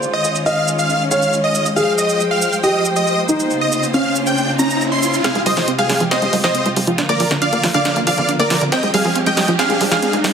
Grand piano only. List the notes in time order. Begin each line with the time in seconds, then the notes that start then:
Already playing: C5
0.46 D#5
1.11 C#5
1.76 G#4
2.63 G4
3.29 D#4
3.94 C#4
4.59 C#4